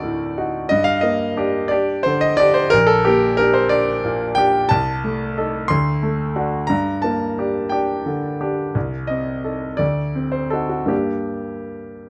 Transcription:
0.00 0.64 D2 medium
0.00 0.57 A2 medium
0.00 0.73 C4 soft
0.00 0.38 D#4 soft
0.00 0.38 F#4 medium
0.00 0.73 A4 medium
0.00 0.73 A#4 medium
0.00 0.69 D5 medium
0.38 0.67 D#4 soft
0.38 0.67 F#4 medium
0.69 2.69 G2 medium
0.69 0.86 D#5 loud
0.84 1.02 F5 medium
1.01 1.57 A#3 soft
1.01 1.69 D#5 medium
1.37 1.67 D4 medium
1.37 1.68 G4 medium
1.68 2.02 D4 soft
1.68 2.02 G4 medium
1.68 2.04 D5 medium
2.03 2.59 D3 medium
2.03 2.21 C5 medium
2.21 2.38 D#5 loud
2.37 2.69 D4 medium
2.37 2.69 G4 medium
2.37 2.55 D5 loud
2.54 2.71 C5 medium
2.70 4.65 A#1 medium
2.70 2.88 A#4 loud
2.87 3.04 A4 loud
3.05 3.58 A#3 soft
3.05 3.38 G4 medium
3.37 3.68 D4 medium
3.37 3.68 G4 medium
3.37 3.54 A#4 medium
3.54 3.70 C5 medium
3.69 4.01 D4 soft
3.69 4.01 G4 medium
3.69 4.36 D5 medium
4.05 4.57 A#2 medium
4.35 4.67 D4 medium
4.35 4.67 G4 medium
4.35 4.68 G5 loud
4.69 5.67 C2 medium
4.69 5.69 A5 loud
5.04 5.57 A3 soft
5.37 5.67 D#4 soft
5.37 5.67 A4 medium
5.68 6.67 D2 medium
5.68 6.68 C6 loud
6.03 6.56 A3 medium
6.36 6.66 D4 medium
6.36 6.66 F#4 medium
6.67 8.71 G2 medium
6.67 7.03 A#5 medium
7.02 7.58 A#3 soft
7.02 7.70 A5 medium
7.38 7.68 D4 soft
7.38 7.69 G4 soft
7.69 8.02 D4 soft
7.69 8.02 G4 soft
7.69 8.39 G5 medium
8.06 8.61 D3 soft
8.41 8.72 D4 soft
8.41 8.72 G4 soft
8.75 9.77 C2 medium
9.07 9.66 C4 soft
9.07 9.79 D#5 medium
9.44 9.76 D#4 soft
9.44 9.76 A4 soft
9.77 10.87 D2 soft
9.77 10.33 D5 medium
10.15 10.75 C4 soft
10.32 10.52 C5 medium
10.50 10.87 D#4 soft
10.50 10.68 F#4 soft
10.50 10.70 A4 medium
10.69 10.89 F#4 medium
10.86 12.09 G2 soft
10.86 12.09 A#3 soft
10.86 12.09 D4 soft
10.86 12.07 G4 soft

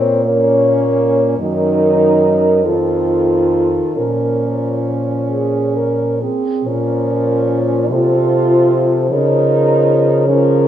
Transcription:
0.00 1.35 A#2 soft
0.00 0.25 C4 soft
0.00 0.24 C#5 soft
0.23 1.38 A#3 soft
0.23 1.35 C#4 medium
0.23 1.22 C#5 soft
1.39 2.65 F#2 soft
1.39 2.47 D#3 soft
1.39 2.65 D#4 medium
1.39 2.66 A#4 soft
2.64 3.79 F2 soft
2.64 3.93 D#3 soft
2.64 3.95 F4 medium
2.64 3.98 A4 soft
3.96 6.26 A#2 soft
3.96 6.26 F3 soft
3.96 6.17 C#4 soft
3.96 5.21 A#4 soft
5.30 5.77 G#4 soft
5.76 6.23 A#4 soft
6.21 6.68 C4 soft
6.21 6.66 G#4 soft
6.65 7.92 A#2 soft
6.65 7.86 F3 soft
6.65 7.92 C#4 medium
6.65 7.75 A#4 soft
7.90 9.12 C3 soft
7.90 9.07 F3 soft
7.90 8.92 F4 medium
7.90 9.08 A4 soft
9.09 10.68 C#3 soft
9.09 10.26 F3 soft
9.09 10.26 D#4 medium
9.09 10.27 A#4 soft
10.28 10.68 F3 medium
10.28 10.68 C#4 medium
10.28 10.68 A#4 medium

